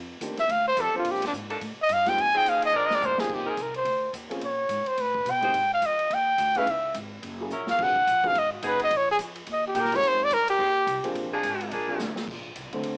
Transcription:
Already playing: upright bass F2
0.20 upright bass D#2, grand piano D#3 A3 C4 D4 G4, kick, hi-hat pedal, ride
0.37 trumpet E5, snare, ride
0.49 upright bass D2, trumpet F5, kick, ride
0.68 trumpet C5
0.77 upright bass F2, saxophone section G3 D4 A4, kick, hi-hat pedal, ride
0.81 trumpet A4
0.94 grand piano F3 A#3 C4 D4 C5, muted upright bass stroke
0.98 trumpet F4
1.04 upright bass A#2, kick, ride
1.11 trumpet G4, snare
1.22 snare, ride
1.27 trumpet D4
1.33 upright bass G#2, kick, hi-hat pedal
1.49 saxophone section F3 A#3 D4 A4, ride
1.61 upright bass A2, kick, ride
1.77 muted upright bass stroke
1.82 trumpet D#5
1.89 upright bass G2, kick, hi-hat pedal, ride
1.93 trumpet F5
2.05 grand piano F3 G#3 C4 D#4 G4, trumpet G5, snare, ride
2.17 upright bass F2, kick, ride
2.21 trumpet G#5
2.33 saxophone section F3 C4 D#4 G#4
2.37 trumpet G5
2.45 upright bass D#2, trumpet F5, kick, hi-hat pedal, ride
2.62 trumpet D#5, ride
2.72 upright bass A#1, saxophone section G#3 C4 D4 A#4
2.77 trumpet D5
2.86 trumpet D#5
2.90 snare
2.95 trumpet D5
3.00 upright bass D2, floor tom, hi-hat pedal
3.05 trumpet C5
3.17 grand piano F3 A#3 C4 D#4 G4, trumpet G#4, snare
3.30 upright bass D#2, kick, crash
3.34 trumpet G4
3.45 saxophone section G3 C4 D#4 A#4
3.49 trumpet G#4
3.57 upright bass C2, kick, hi-hat pedal, ride
3.62 trumpet A#4
3.74 trumpet C5, ride
3.85 upright bass D2, kick, ride
4.13 upright bass D#2, kick, hi-hat pedal, ride
4.29 grand piano F3 A#3 C4 C#4 G#4, ride
4.41 upright bass A#2, trumpet C#5, kick, ride
4.69 upright bass G#2, kick, hi-hat pedal, ride
4.86 trumpet C5, muted upright bass stroke, ride
4.97 upright bass A2, trumpet B4, kick, ride
5.14 kick
5.25 upright bass B2, kick, hi-hat pedal, ride
5.31 trumpet G5
5.41 grand piano G#3 A#3 C4 D#4 G4, saxophone section G#3 D#4 G4 C5, ride
5.53 upright bass G#2, kick, ride
5.74 trumpet F5
5.82 upright bass F2, kick, hi-hat pedal, ride
5.86 trumpet D#5
5.99 ride
6.10 upright bass D#2, trumpet G5, kick, ride
6.38 upright bass D2, kick, hi-hat pedal, ride
6.55 grand piano E3 B3 C#4 D#4 G#4, saxophone section G#3 C#4 E4 B4, trumpet F5, ride
6.66 upright bass C#2, kick, ride
6.71 trumpet E5
6.94 upright bass G#1, kick, hi-hat pedal, ride
7.22 upright bass F#1, kick, ride
7.40 grand piano F#3 A#3 C#4 E4 G#4
7.50 upright bass A#1, saxophone section F#3 C#4 E4 A#4, hi-hat pedal
7.67 trumpet F5, snare
7.78 upright bass B1, grand piano F#3 B3 C#4 D#4 G#4, kick, crash
7.83 trumpet F#5
7.96 kick
8.07 upright bass A#1, kick, hi-hat pedal, ride
8.24 grand piano F#3 B3 C#4 D#4 G#4, trumpet F5, kick, ride
8.35 upright bass G#1, kick, ride
8.39 trumpet D#5
8.53 trumpet F#4
8.62 upright bass F#1, saxophone section F#3 B3 D#4 G#4, kick, hi-hat pedal, ride
8.67 trumpet B4
8.79 ride
8.84 trumpet D#5
8.91 upright bass A#1, kick, ride
8.97 trumpet C#5
9.11 trumpet G#4
9.19 upright bass F2, kick, hi-hat pedal, ride
9.35 ride
9.47 upright bass D#2, kick, ride
9.53 trumpet D#5
9.68 trumpet G4
9.75 upright bass A#2, saxophone section D#3 A#3 G4, kick, hi-hat pedal, ride
9.81 trumpet A#4, snare
9.92 grand piano G#3 A#3 C4 D#4 G4, trumpet C#5, snare, ride
10.03 upright bass G#2, kick, ride
10.08 trumpet C5
10.13 upright bass G2
10.21 upright bass D#2, trumpet D5
10.31 upright bass G2, trumpet A#4, kick, hi-hat pedal, ride
10.48 trumpet G4, ride
10.57 upright bass D#2, saxophone section D#3 G#3 C4 G4, kick
10.87 upright bass C2, kick, hi-hat pedal, ride
11.03 grand piano F3 A#3 C4 D4 G#4, ride
11.14 upright bass A#1, kick, ride
11.32 saxophone section F3 A#3 D4 G#4
11.43 upright bass G#1, kick, hi-hat pedal, ride
11.60 ride
11.71 upright bass A#1, saxophone section F3 A#3 D4 G#4, kick, ride
11.87 grand piano F3 A#3 C4 D4 G#4
11.99 upright bass D2, snare, hi-hat pedal
12.16 snare
12.27 upright bass A#1, kick, crash
12.56 upright bass C2, kick, hi-hat pedal, ride
12.66 upright bass A#1
12.73 upright bass A1, grand piano D3 A3 C4, ride
12.83 upright bass D2, kick, ride

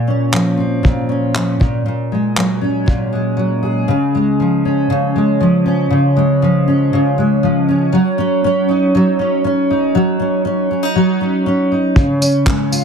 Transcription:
Already playing: steel-string acoustic guitar A#2
0.07 steel-string acoustic guitar C#4
0.32 steel-string acoustic guitar F3, clap
0.57 steel-string acoustic guitar C4
0.83 steel-string acoustic guitar A#2, kick
1.09 steel-string acoustic guitar C#4
1.34 steel-string acoustic guitar F3, clap
1.60 steel-string acoustic guitar A#2, kick
1.86 steel-string acoustic guitar A#2
2.12 steel-string acoustic guitar G#3
2.37 steel-string acoustic guitar F#3, clap
2.61 steel-string acoustic guitar C#4
2.86 steel-string acoustic guitar A#2, kick
3.13 steel-string acoustic guitar G#3
3.37 steel-string acoustic guitar F#3
3.63 steel-string acoustic guitar G#4
3.88 steel-string acoustic guitar C#3
4.15 steel-string acoustic guitar G#3
4.40 steel-string acoustic guitar F3
4.65 steel-string acoustic guitar C#4
4.90 steel-string acoustic guitar C#3
5.16 steel-string acoustic guitar G#3
5.40 steel-string acoustic guitar F3
5.66 steel-string acoustic guitar C#4
5.90 steel-string acoustic guitar C#3
6.16 steel-string acoustic guitar G#3
6.42 steel-string acoustic guitar F3
6.68 steel-string acoustic guitar C#4
6.93 steel-string acoustic guitar C#3
7.18 steel-string acoustic guitar G#3
7.43 steel-string acoustic guitar F3
7.69 steel-string acoustic guitar C#4
7.92 steel-string acoustic guitar F#3
8.18 steel-string acoustic guitar C#4
8.44 steel-string acoustic guitar C#4
8.69 steel-string acoustic guitar D#4
8.95 steel-string acoustic guitar F#3
9.19 steel-string acoustic guitar C#4
9.44 steel-string acoustic guitar C#4
9.71 steel-string acoustic guitar D#4
9.95 steel-string acoustic guitar F#3
10.20 steel-string acoustic guitar C#4
10.45 steel-string acoustic guitar C#4
10.71 steel-string acoustic guitar C#4
10.83 steel-string acoustic guitar D#4
10.95 steel-string acoustic guitar F#3
11.21 steel-string acoustic guitar C#4
11.46 steel-string acoustic guitar C#4
11.72 steel-string acoustic guitar D#4
11.96 steel-string acoustic guitar C#3, kick
12.21 steel-string acoustic guitar C#4, tambourine
12.46 steel-string acoustic guitar G#3, kick, clap
12.72 steel-string acoustic guitar F4, tambourine

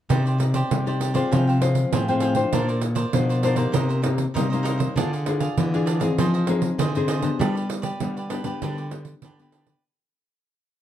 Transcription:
0.09 nylon-string guitar C3 C4 D#4 G4 D5, cavaquinho D#4 G4 C5 D5, pandeiro
0.26 cavaquinho G4 C5 D5, pandeiro
0.38 nylon-string guitar D#4 G4 D5, muted cavaquinho stroke, pandeiro
0.54 cavaquinho G4 C5 D5, pandeiro
0.71 nylon-string guitar C3 G3, pandeiro
0.86 nylon-string guitar D#4 G4 D5, cavaquinho G4 C5 D5, pandeiro
1.00 cavaquinho D#4 G4 C5 D5, pandeiro
1.14 nylon-string guitar C4 F4 G#4 C5, cavaquinho G4 C5 D5, pandeiro
1.31 nylon-string guitar C3 F3, cavaquinho G#4 C5 F5 G5, pandeiro
1.47 cavaquinho C5 F5 G5, pandeiro
1.61 nylon-string guitar C4 F4 G#4 C5, muted cavaquinho stroke, pandeiro
1.75 pandeiro
1.92 nylon-string guitar A2 F3, cavaquinho G#4 C5 F5 G5, pandeiro
2.08 nylon-string guitar C4 F4 G#4 C5, cavaquinho C5 F5 G5, pandeiro
2.20 cavaquinho G#4 C5 F5 G5, pandeiro
2.35 nylon-string guitar D4 F4 C5, cavaquinho C5 F5 G5, pandeiro
2.53 nylon-string guitar A#2 A#3, cavaquinho D4 A#4 C5 D5, pandeiro
2.68 cavaquinho A#4 C5 D5, pandeiro
2.81 muted cavaquinho stroke, pandeiro
2.95 cavaquinho A#4 C5 D5, pandeiro
3.13 nylon-string guitar B2 F3 D4 F4 C5, pandeiro
3.29 cavaquinho A#4 C5 D5, pandeiro
3.43 cavaquinho D4 A#4 C5 D5, nylon-string guitar D4 F4 C5, pandeiro
3.56 nylon-string guitar A#3 D#4 G4, cavaquinho A#4 C5 D5, pandeiro
3.72 nylon-string guitar C3, cavaquinho D#4 A#4 C5 D#5, pandeiro
3.89 cavaquinho A#4 C5 D#5, pandeiro
4.02 nylon-string guitar A#3 D#4 G4, muted cavaquinho stroke, pandeiro
4.18 pandeiro
4.34 nylon-string guitar C3 G3 A#3 D#4 G4, cavaquinho D#4 A#4 C5 D#5, pandeiro
4.50 nylon-string guitar A#3, cavaquinho A#4 C5 D#5, pandeiro
4.54 nylon-string guitar D#4 G4
4.63 cavaquinho D#4 A#4 C5 D#5, pandeiro
4.78 cavaquinho A#4 C5 D#5, pandeiro
4.96 nylon-string guitar D3 D4 F4 G#4, cavaquinho D4 G#4 D5 F5, pandeiro
5.13 cavaquinho G#4 D5 F5, pandeiro
5.26 nylon-string guitar D4 F4 G#4, muted cavaquinho stroke, pandeiro
5.40 cavaquinho G#4 D5 F5, pandeiro
5.58 nylon-string guitar D3 E3, pandeiro
5.74 nylon-string guitar D4 F4 G#4, cavaquinho G#4 D5 F5, pandeiro
5.86 cavaquinho D4 G#4 D5 F5, pandeiro
6.00 nylon-string guitar C4 D#4 G#4, cavaquinho G#4 D5 F5, pandeiro
6.18 nylon-string guitar F3, cavaquinho F4 G#4 C5 D#5, pandeiro
6.34 cavaquinho G#4 C5 D#5, pandeiro
6.47 nylon-string guitar C4 D#4 G#4, muted cavaquinho stroke, pandeiro
6.62 pandeiro
6.78 nylon-string guitar C3 D3, cavaquinho F4 G#4 C5 D#5, pandeiro
6.95 nylon-string guitar C4 D#4 G#4, cavaquinho G#4 C5 D#5, pandeiro
7.08 cavaquinho F4 G#4 C5 D#5, pandeiro
7.22 nylon-string guitar B3 D4 G4, cavaquinho G#4 C5 D#5, pandeiro
7.39 nylon-string guitar G3, cavaquinho D4 G4 B4 D5, pandeiro
7.55 cavaquinho G4 B4 D5, pandeiro
7.69 muted cavaquinho stroke, pandeiro
7.82 cavaquinho G4 B4 D5, pandeiro
8.00 nylon-string guitar D3 G3 B3 D4 G4, pandeiro
8.17 cavaquinho G4 B4 D5, pandeiro
8.30 nylon-string guitar B3 D4 G4, cavaquinho D4 G4 B4 D5, pandeiro
8.44 nylon-string guitar B3 D4 G4, cavaquinho G4 B4 D5, pandeiro
8.62 nylon-string guitar D3 G3, cavaquinho D4 G4 B4 D5, pandeiro
8.78 cavaquinho G4 B4 D5, pandeiro
8.91 nylon-string guitar B3 D4 G4, muted cavaquinho stroke, pandeiro
9.05 pandeiro
9.22 nylon-string guitar D3, cavaquinho D4 G4 B4 D5, pandeiro
9.39 nylon-string guitar B3 D4 G4, cavaquinho G4 B4 D5, pandeiro
9.52 cavaquinho D4 G4 B4 D5, pandeiro
9.67 cavaquinho G4 B4 D5, pandeiro

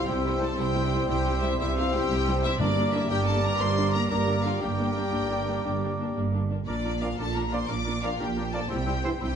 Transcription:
Already playing: trombone section G2 G3, french horn section C4 E4, trumpet C5
0.07 double bass section C2, cello section C3, viola section G3 E4, clarinet G4, violin section G4 G5, cor anglais C5, flute E6
0.24 viola section G3 E4
0.40 viola section G3 E4, violin section A4 A5
0.57 double bass section C2, cello section C3, viola section G3 E4, violin section G4 G5, clarinet G4, cor anglais C5, flute E6
0.74 viola section G3 E4
0.92 viola section G3 E4
1.08 double bass section C2, cello section C3, viola section G3 E4, violin section G4 G5, clarinet G4, cor anglais C5, flute E6
1.26 viola section G3 E4
1.42 viola section G3 E4, violin section E4 E5
1.58 double bass section C2, cello section C3, viola section G3 E4, violin section E4 E5, clarinet G4, cor anglais C5, flute E6
1.76 viola section G3 E4, violin section F4 F5
1.92 viola section G3 E4, violin section G4 G5
2.09 double bass section C2, cello section C3, viola section G3 E4
2.27 viola section G3 E4
2.43 viola section G3 E4, violin section E4 E5
2.58 double bass section G1, trombone section G2 G3, timpani G2, cello section G2, french horn section A#3 D4, viola section A#3 D4, violin section D4 D5, clarinet G4, cor anglais A#4, trumpet D5, flute D6
2.77 viola section A#3 D4
2.93 viola section A#3 D4, violin section E4 E5
3.09 double bass section G1, cello section G2, trombone section G2 G3, french horn section A#3 D4, viola section A#3 D4, violin section G4 G5, clarinet G4, cor anglais A#4, trumpet D5, flute D6
3.26 viola section A#3 D4, violin section A4 A5
3.42 viola section A#3 D4, violin section A#4 A#5
3.59 double bass section G1, cello section G2, viola section A#3 D4, violin section C5 C6
3.76 viola section A#3 D4
3.92 viola section A#3 D4, violin section A#4 A#5
4.09 double bass section G1, cello section G2, trombone section G2 G3, viola section A#3 D4, french horn section A#3 D4, clarinet G4, violin section A#4 A#5, cor anglais A#4, trumpet D5, flute D6
4.26 viola section A#3 D4
4.43 viola section A#3 D4, violin section F4 F5
4.61 double bass section G1, cello section G2, trombone section G2 G3, viola section A#3 D4, french horn section A#3 D4, violin section G4 G5, clarinet G4, cor anglais A#4, trumpet D5, flute D6
4.78 viola section A#3 D4
4.95 viola section A#3 D4
5.12 double bass section G1, cello section G2, viola section A#3 D4
5.29 viola section A#3 D4
5.47 viola section A#3 D4
5.64 double bass section G1, cello section G2, viola section A#3 D4
5.82 viola section A#3 D4
5.99 viola section A#3 D4
6.16 double bass section G1, cello section G2, viola section A#3 D4
6.33 viola section A#3 D4
6.49 viola section A#3 D4
6.66 double bass section A#1, cello section A#2, viola section A#3 D4, violin section D4 D5, clarinet F4, cor anglais A#4, flute D6
6.84 viola section A#3 D4, clarinet F4, cor anglais A#4, flute D6
7.01 trombone section A#2 F3, french horn section A#3 D4, viola section A#3 D4, clarinet F4, violin section F4 F5, cor anglais A#4, trumpet D5, flute D6
7.17 double bass section A#1, cello section A#2, viola section A#3 D4, clarinet F4, violin section A4 A5, cor anglais A#4, flute D6
7.34 viola section A#3 D4, clarinet F4, cor anglais A#4, violin section A#4 A#5, flute D6
7.50 trombone section A#2 F3, viola section A#3 D4, french horn section A#3 D4, clarinet F4, cor anglais A#4, violin section C5 C6, trumpet D5
7.55 flute D6
7.68 double bass section A#1, cello section A#2, viola section A#3 D4, clarinet F4, cor anglais A#4, violin section D5 D6, flute D6
7.85 viola section A#3 D4, clarinet F4, cor anglais A#4, flute D6
8.02 trombone section A#2 F3, viola section A#3 D4, french horn section A#3 D4, clarinet F4, violin section F4 F5, cor anglais A#4, trumpet D5, flute D6
8.19 double bass section A#1, cello section A#2, viola section A#3 D4, clarinet F4, violin section G4 G5, cor anglais A#4, flute D6
8.36 viola section A#3 D4, clarinet F4, cor anglais A#4, flute D6
8.53 trombone section A#2 F3, french horn section A#3 D4, viola section A#3 D4, clarinet F4, violin section A4 A5, cor anglais A#4, trumpet D5, flute D6
8.68 double bass section C2, cello section C3, viola section G3 E4, clarinet E4, violin section G4 G5, cor anglais C5, flute E6
8.86 viola section G3 E4, clarinet E4, cor anglais C5, flute E6
9.03 trombone section G2 E3, viola section G3 E4, french horn section C4 E4, clarinet E4, trumpet C5, cor anglais C5, flute E6
9.19 double bass section C2, cello section C3, viola section G3 E4, clarinet E4, violin section G4 G5, cor anglais C5, flute E6

